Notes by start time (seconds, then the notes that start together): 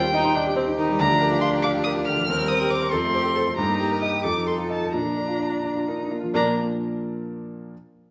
Already playing: D#2 G3 F4 C5 G5
0.04 G4
0.14 D#4 D#5
0.25 C6
0.35 D4 G4 D#5
0.46 G4
0.56 C4 C5
0.67 D#4
0.78 D#3 D#4
0.89 G3
0.99 D2 D4 A#5
1.10 F3
1.21 A#4
1.32 F4
1.41 F5 C6
1.53 A#5
1.62 F5 D6
1.75 F4
1.84 A#4 D#6
1.97 F4
2.05 D3 F6
2.19 F3
2.27 D#2 C4 A#4
2.40 G3
2.48 C5 D#6
2.61 G4
2.70 C5 D6
2.82 C6
2.91 F2 C4 A4 C6
3.04 A3
3.13 G4 C5
3.25 A4
3.34 A4 C5
3.47 C6
3.55 G2 D#4 G4 A#5
3.69 A#3
3.79 G4
3.92 A#4
4.02 D#5 D#6
4.13 G5
4.24 F2 D#4 A4 D6
4.36 F3
4.47 A4 C6
4.58 F4
4.70 D#5 A5
4.82 A5
4.93 A#2 D4 A#5
5.05 F3
5.16 A#4
5.28 F4
5.40 D5
5.52 A#5
5.63 D4 D5
5.75 F4
5.87 D#4 A#4
6.00 D4
6.11 A#3 F4
6.24 F3
6.34 A#2 F3 A#3 D4 A#4 D5 A#5